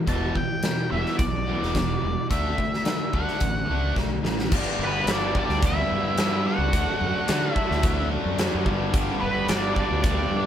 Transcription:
0.07 fingered electric bass E1, overdriven electric guitar E2 B2 E3, lead electric guitar A5, kick, closed hi-hat
0.35 overdriven electric guitar E2 B2, lead electric guitar G5, kick
0.63 overdriven electric guitar E2 B2, snare, closed hi-hat
0.91 fingered electric bass E1, overdriven electric guitar E2 B2 E3, lead electric guitar E5
1.06 snare
1.18 fingered electric bass B1, overdriven electric guitar E2 B2, lead electric guitar D5, kick, closed hi-hat
1.49 overdriven electric guitar E2 B2 E3
1.62 fingered electric bass E1, snare
1.75 overdriven electric guitar E2 B2, kick, snare, closed hi-hat
2.03 fingered electric bass E1, overdriven electric guitar E2 B2
2.30 fingered electric bass D2, overdriven electric guitar D3 A3 D4, lead electric guitar E5, kick, closed hi-hat
2.58 overdriven electric guitar D3 A3, kick
2.74 snare
2.85 overdriven electric guitar D3 A3, snare, closed hi-hat
3.13 fingered electric bass D2, overdriven electric guitar D3 A3 D4, lead electric guitar F#5, kick
3.28 snare
3.40 fingered electric bass A1, overdriven electric guitar D3 A3, kick, closed hi-hat
3.70 fingered electric bass C#2, overdriven electric guitar D3 A3 D4
3.96 fingered electric bass B1, overdriven electric guitar D3 A3, kick, snare
4.23 fingered electric bass A1, overdriven electric guitar D3 A3, snare
4.39 snare
4.52 fingered electric bass G1, overdriven electric guitar G2 D3 G3 B3 D4 G4, kick, crash
4.79 fingered electric bass G1
4.84 lead electric guitar B3 B4
5.06 fingered electric bass G1, overdriven electric guitar G2 D3 G3 B3 D4 G4, snare, closed hi-hat
5.11 lead electric guitar D5
5.35 overdriven electric guitar G2 D3 G3 B3 D4 G4, lead electric guitar D5, kick
5.49 fingered electric bass D2, snare
5.62 overdriven electric guitar G2 D3 G3 B3 D4 G4, lead electric guitar E5, kick, closed hi-hat
5.68 lead electric guitar E4
5.92 fingered electric bass G2
6.18 overdriven electric guitar G2 D3 G3 B3 D4 G4, snare, closed hi-hat
6.46 overdriven electric guitar G2 D3 G3 B3 D4 G4, lead electric guitar F#4 F#5
6.58 fingered electric bass C#2
6.73 fingered electric bass D2, overdriven electric guitar D3 F#3 A3 D4 F#4, kick, closed hi-hat
7.01 fingered electric bass F#2
7.28 overdriven electric guitar D3 F#3 A3 D4 F#4, fingered electric bass D3, snare, closed hi-hat
7.53 overdriven electric guitar D3 F#3 A3 D4, lead electric guitar E4 E5, kick
7.57 overdriven electric guitar F#4
7.71 fingered electric bass D2, snare
7.83 overdriven electric guitar D3 F#3 A3 D4 F#4, kick, closed hi-hat
8.25 fingered electric bass F#2
8.39 overdriven electric guitar D3 F#3 A3 D4 F#4, snare, closed hi-hat
8.54 fingered electric bass F#2
8.66 fingered electric bass G1, overdriven electric guitar G2 D3 G3 B3 D4 G4, kick
8.93 overdriven electric guitar G2 D3 G3 B3 D4 G4, kick, closed hi-hat
9.20 fingered electric bass G1, lead electric guitar B3 B4
9.48 fingered electric bass G1, overdriven electric guitar G2 D3 G3 B3 D4 G4, lead electric guitar D5, snare, closed hi-hat
9.74 overdriven electric guitar G2 D3 G3 B3 G4, lead electric guitar D5, kick
9.79 overdriven electric guitar D4
9.91 fingered electric bass D2
10.03 overdriven electric guitar G2 D3 G3 B3 D4 G4, lead electric guitar D5, kick, closed hi-hat
10.31 fingered electric bass G2

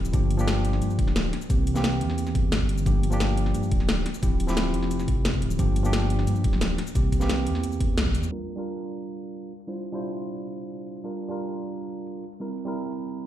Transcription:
Already playing: detuned saw bass D1, tine electric piano F3 C4 E4 G4
0.05 shaker
0.13 detuned saw bass G1, tine electric piano F3 A#3 D4 G4, kick, closed hi-hat, shaker
0.31 closed hi-hat, shaker
0.38 tine electric piano F3 A#3 D4 G4, shaker
0.48 snare, closed hi-hat, shaker
0.65 closed hi-hat, shaker
0.73 snare
0.82 detuned saw bass G2, closed hi-hat, shaker
0.90 shaker
0.99 detuned saw bass D1, kick, closed hi-hat
1.07 snare
1.16 snare, closed hi-hat, shaker
1.33 snare, closed hi-hat
1.42 shaker
1.49 detuned saw bass C2, tine electric piano E3 A#3 C4 G4, kick, closed hi-hat, shaker
1.67 closed hi-hat, shaker
1.74 tine electric piano E3 A#3 C4 G4, snare, shaker
1.84 snare, closed hi-hat, shaker
2.01 detuned saw bass E2, closed hi-hat, shaker
2.10 snare
2.18 closed hi-hat, shaker
2.27 snare, shaker
2.35 kick, closed hi-hat
2.52 detuned saw bass G1, snare, closed hi-hat, shaker
2.61 kick
2.69 closed hi-hat
2.78 shaker
2.86 detuned saw bass G1, tine electric piano F3 A#3 D4 G4, kick, closed hi-hat, shaker
3.03 closed hi-hat, shaker
3.10 tine electric piano F3 A#3 D4 G4, shaker
3.20 snare, closed hi-hat, shaker
3.37 closed hi-hat, shaker
3.46 snare
3.54 detuned saw bass G2, closed hi-hat, shaker
3.63 shaker
3.71 detuned saw bass D1, kick, closed hi-hat
3.80 snare
3.89 snare, closed hi-hat, shaker
4.06 snare, closed hi-hat
4.14 shaker
4.22 detuned saw bass D1, tine electric piano F3 C4 E4 G4, kick, closed hi-hat, shaker
4.40 closed hi-hat, shaker
4.47 tine electric piano F3 C4 E4 G4, snare, shaker
4.57 snare, closed hi-hat, shaker
4.74 detuned saw bass F1, closed hi-hat, shaker
4.83 snare
4.91 closed hi-hat, shaker
5.00 snare, shaker
5.08 kick, closed hi-hat
5.25 snare, closed hi-hat, shaker
5.34 kick
5.42 detuned saw bass D1, closed hi-hat
5.51 shaker
5.58 detuned saw bass G1, tine electric piano F3 A#3 D4 G4, kick, closed hi-hat, shaker
5.76 closed hi-hat, shaker
5.83 tine electric piano F3 A#3 D4 G4, shaker
5.93 snare, closed hi-hat, shaker
6.10 closed hi-hat, shaker
6.19 snare
6.27 detuned saw bass G2, closed hi-hat, shaker
6.36 shaker
6.44 detuned saw bass D1, kick, closed hi-hat
6.53 snare
6.61 snare, closed hi-hat, shaker
6.78 snare, closed hi-hat
6.87 shaker
6.95 detuned saw bass C2, tine electric piano E3 A#3 C4 G4, kick, closed hi-hat, shaker
7.12 kick, closed hi-hat, shaker
7.19 tine electric piano E3 A#3 C4 G4, snare, shaker
7.29 snare, closed hi-hat, shaker
7.46 detuned saw bass E2, closed hi-hat, shaker
7.55 snare
7.63 closed hi-hat, shaker
7.72 shaker
7.80 kick, closed hi-hat
7.98 detuned saw bass A#1, snare, closed hi-hat, shaker
8.06 kick
8.15 detuned saw bass E2, closed hi-hat, shaker
8.23 shaker
8.31 tine electric piano G3 D4 F4 A#4
8.49 closed hi-hat
8.56 tine electric piano G3 D4 F4 A#4
8.66 closed hi-hat
8.83 closed hi-hat
9.00 closed hi-hat
9.17 closed hi-hat
9.34 closed hi-hat, shaker
9.51 closed hi-hat
9.60 shaker
9.67 tine electric piano G3 D4 E4 F4 C5, closed hi-hat, shaker
9.85 closed hi-hat, shaker
9.92 tine electric piano G3 D4 E4 F4 C5, shaker
10.02 closed hi-hat, shaker
10.19 closed hi-hat
10.36 closed hi-hat, shaker
10.45 shaker
10.53 closed hi-hat
10.70 closed hi-hat, shaker
10.87 closed hi-hat
10.96 shaker
11.04 tine electric piano G3 D4 F4 A#4, closed hi-hat, shaker
11.21 closed hi-hat, shaker
11.28 tine electric piano G3 D4 F4 A#4, shaker
11.39 closed hi-hat, shaker
11.56 closed hi-hat
11.73 closed hi-hat, shaker
11.81 shaker
11.90 closed hi-hat
12.07 closed hi-hat, shaker
12.24 closed hi-hat
12.32 shaker
12.40 tine electric piano G3 C4 E4 A#4, closed hi-hat, shaker
12.58 closed hi-hat, shaker
12.65 tine electric piano G3 C4 E4 A#4, shaker
12.75 closed hi-hat, shaker
12.92 closed hi-hat, shaker
13.09 closed hi-hat, shaker
13.18 shaker

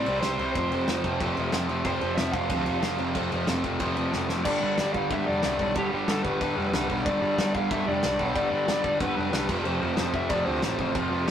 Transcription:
Already playing: overdriven electric guitar D5
0.06 picked electric bass C2, distorted electric guitar C3 G3 C4, crash
0.21 picked electric bass C2, distorted electric guitar C3 G3, overdriven electric guitar C5, snare, crash
0.25 distorted electric guitar C4
0.39 picked electric bass C2, distorted electric guitar C3 G3 C4, crash
0.52 picked electric bass F1, distorted electric guitar F2, overdriven electric guitar C5, kick, crash
0.57 distorted electric guitar C3 F3
0.71 picked electric bass F1, distorted electric guitar F2 C3 F3, crash
0.87 picked electric bass F1, distorted electric guitar F2 C3 F3, snare, crash
1.04 picked electric bass F1, distorted electric guitar F2 C3 F3, kick, crash
1.20 picked electric bass F1, distorted electric guitar F2 C3 F3, kick, crash
1.36 picked electric bass F1, distorted electric guitar F2 C3 F3, crash
1.52 picked electric bass F1, distorted electric guitar F2 C3 F3, snare, crash
1.69 picked electric bass F1, distorted electric guitar F2 C3 F3, crash
1.84 picked electric bass F1, distorted electric guitar F2 C3 F3, overdriven electric guitar C5, kick, crash
2.01 picked electric bass F1, distorted electric guitar F2 C3 F3, crash
2.17 picked electric bass F1, distorted electric guitar F2 C3 F3, overdriven electric guitar E5, snare, crash
2.32 picked electric bass F1, distorted electric guitar F2 C3 F3, overdriven electric guitar F5, kick, crash
2.49 picked electric bass D2, distorted electric guitar F2 C3 F3, kick, crash
2.66 picked electric bass F1, distorted electric guitar F2 C3 F3, crash
2.82 picked electric bass F1, distorted electric guitar F2 C3 F3, snare, crash
2.98 picked electric bass F1, distorted electric guitar F2 C3 F3, crash
3.15 picked electric bass F1, distorted electric guitar F2 C3 F3, kick, crash
3.31 picked electric bass F1, distorted electric guitar F2 C3 F3, crash
3.47 picked electric bass F1, distorted electric guitar F2 C3 F3, snare, crash
3.64 picked electric bass F1, distorted electric guitar F2 C3 F3, kick, crash
3.80 picked electric bass F1, distorted electric guitar F2 C3 F3, kick, crash
3.96 picked electric bass F1, distorted electric guitar F2 C3 F3, crash
4.12 picked electric bass F1, distorted electric guitar F2 C3 F3, snare
4.28 picked electric bass F1, distorted electric guitar F2 C3 F3, snare
4.45 picked electric bass G1, distorted electric guitar G2 D3 G3, overdriven electric guitar D5, kick, crash
4.60 picked electric bass G1, distorted electric guitar G2 D3 G3
4.78 picked electric bass G1, distorted electric guitar G2 D3 G3, snare, crash
4.93 picked electric bass G1, distorted electric guitar G2 D3 G3, overdriven electric guitar F5, kick
5.10 picked electric bass G1, distorted electric guitar G2 D3 G3, overdriven electric guitar E5, kick, crash
5.26 picked electric bass F1, distorted electric guitar G2 D3 G3, overdriven electric guitar D5
5.42 picked electric bass C2, distorted electric guitar G2 D3 G3, snare, crash
5.59 picked electric bass B1, distorted electric guitar G2 D3 G3, kick
5.75 picked electric bass G1, distorted electric guitar G2 D3 G3, overdriven electric guitar G4, kick, crash
5.92 picked electric bass G1, distorted electric guitar G2 D3 G3
6.08 picked electric bass G1, distorted electric guitar G2 D3 G3, overdriven electric guitar A4, snare, crash
6.23 picked electric bass G1, distorted electric guitar G2 D3 G3, overdriven electric guitar B4, kick
6.41 picked electric bass G1, distorted electric guitar G2 D3 G3, kick, crash
6.57 picked electric bass F1, distorted electric guitar G2 D3 G3
6.73 picked electric bass C2, distorted electric guitar G2 D3 G3, snare, crash
6.89 picked electric bass B1, distorted electric guitar G2 D3 G3, kick
7.06 picked electric bass G1, distorted electric guitar G2 D3 G3, overdriven electric guitar D5, kick, crash
7.21 picked electric bass G1, distorted electric guitar G2 D3 G3
7.38 picked electric bass G1, distorted electric guitar G2 D3 G3, snare, crash
7.55 picked electric bass G1, distorted electric guitar G2 D3 G3, overdriven electric guitar F5, kick
7.71 picked electric bass G1, distorted electric guitar G2 D3 G3, overdriven electric guitar E5, kick, crash
7.86 picked electric bass F1, distorted electric guitar G2 D3 G3, overdriven electric guitar D5
8.03 picked electric bass C2, distorted electric guitar G2 D3 G3, snare, crash
8.19 picked electric bass B1, distorted electric guitar G2 D3 G3, kick
8.34 picked electric bass G1, distorted electric guitar G2 D3 G3, overdriven electric guitar D5, kick, crash
8.51 picked electric bass G1, distorted electric guitar G2 D3 G3
8.67 picked electric bass G1, distorted electric guitar G2 D3 G3, snare, crash
8.84 picked electric bass G1, distorted electric guitar G2 D3 G3, kick
9.00 picked electric bass G1, distorted electric guitar G2 D3 G3, overdriven electric guitar B4, kick, crash
9.16 picked electric bass F1, distorted electric guitar G2 D3 G3
9.32 picked electric bass C2, distorted electric guitar G2 D3 G3, snare, crash
9.48 picked electric bass F1, distorted electric guitar F2 C3 F3, kick, crash
9.64 picked electric bass F1, distorted electric guitar F2 C3 F3, overdriven electric guitar C5, crash
9.80 picked electric bass F1, distorted electric guitar F2 C3 F3
9.96 picked electric bass F1, distorted electric guitar F2 C3 F3, snare, crash
10.13 picked electric bass F1, distorted electric guitar F2 C3 F3, overdriven electric guitar E5, kick
10.29 picked electric bass F1, distorted electric guitar F2 C3 F3, overdriven electric guitar D5, kick, crash
10.45 picked electric bass D2, distorted electric guitar F2 C3 F3, overdriven electric guitar C5
10.62 picked electric bass A1, distorted electric guitar F2 C3 F3, snare, crash
10.78 picked electric bass A1, distorted electric guitar F2 C3 F3, kick
10.95 picked electric bass F1, distorted electric guitar F2 C3 F3, overdriven electric guitar F4, kick, crash
11.11 picked electric bass F1, distorted electric guitar F2 C3 F3
11.27 picked electric bass F1, distorted electric guitar C3 F3, overdriven electric guitar G4, snare, crash

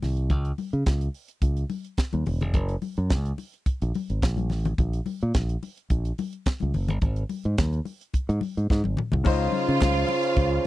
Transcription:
0.02 fingered electric bass C2, snare, open hi-hat, low conga
0.17 closed hi-hat
0.30 fingered electric bass C#2, kick, closed hi-hat, low conga
0.45 closed hi-hat
0.58 open hi-hat, high conga
0.73 fingered electric bass C#3, closed hi-hat
0.86 fingered electric bass C#2, kick, snare, closed hi-hat
1.01 closed hi-hat
1.14 open hi-hat
1.28 closed hi-hat
1.42 fingered electric bass C#2, kick, closed hi-hat, muted conga
1.57 closed hi-hat
1.70 open hi-hat, high conga
1.85 closed hi-hat
1.97 kick, snare, closed hi-hat
2.13 fingered electric bass D#2, closed hi-hat, high conga
2.26 fingered electric bass E1, open hi-hat, muted conga, low conga
2.41 fingered electric bass F1, closed hi-hat, low conga
2.54 fingered electric bass F#1, kick, closed hi-hat, muted conga, low conga
2.69 closed hi-hat
2.82 open hi-hat, high conga
2.97 fingered electric bass F#2, closed hi-hat
3.10 fingered electric bass C#2, kick, snare, closed hi-hat, muted conga
3.25 closed hi-hat
3.38 open hi-hat, muted conga
3.54 closed hi-hat
3.66 kick, closed hi-hat, muted conga
3.82 fingered electric bass A#1, closed hi-hat
3.94 open hi-hat, muted conga, high conga
4.10 fingered electric bass G#1, closed hi-hat
4.22 fingered electric bass A#1, kick, snare, closed hi-hat, muted conga
4.37 closed hi-hat, high conga
4.50 fingered electric bass A1, snare, open hi-hat, low conga
4.65 closed hi-hat, low conga
4.78 fingered electric bass A#1, kick, closed hi-hat, low conga
4.93 closed hi-hat
5.06 open hi-hat, muted conga, high conga
5.21 fingered electric bass A#2, closed hi-hat
5.34 fingered electric bass A#1, kick, snare, closed hi-hat, muted conga
5.49 closed hi-hat
5.63 open hi-hat, muted conga
5.77 closed hi-hat
5.90 fingered electric bass A#1, kick, closed hi-hat
6.05 closed hi-hat
6.18 open hi-hat, muted conga, high conga
6.33 closed hi-hat
6.46 kick, snare, closed hi-hat, muted conga
6.60 fingered electric bass C#2, closed hi-hat, high conga
6.74 fingered electric bass F#1, open hi-hat, low conga
6.88 fingered electric bass G1, closed hi-hat, low conga
7.01 fingered electric bass G#1, kick, closed hi-hat, muted conga, low conga
7.16 closed hi-hat
7.29 open hi-hat, muted conga, high conga
7.44 fingered electric bass G#2, closed hi-hat
7.58 fingered electric bass D#2, kick, snare, closed hi-hat, high conga
7.73 closed hi-hat
7.85 open hi-hat, muted conga
8.01 closed hi-hat
8.14 kick, closed hi-hat, muted conga
8.29 fingered electric bass G#2, closed hi-hat
8.41 open hi-hat, muted conga, high conga
8.57 fingered electric bass G#2, closed hi-hat
8.70 fingered electric bass G#2, kick, snare, muted conga
8.84 fingered electric bass G#1, high tom, high conga
8.97 mid tom, muted conga, low conga
9.12 fingered electric bass C2, floor tom, low conga
9.24 fingered electric bass C#2, grand piano C#3 C#4 D#4 F4 C5, french horn section C#3 F4 C5, string section F4 F5, kick, crash, muted conga, low conga
9.52 open hi-hat, high conga
9.68 fingered electric bass C#3, closed hi-hat
9.81 fingered electric bass C#2, kick, snare, clap, closed hi-hat, high conga
10.08 open hi-hat, muted conga
10.23 closed hi-hat
10.37 fingered electric bass C#2, kick, closed hi-hat

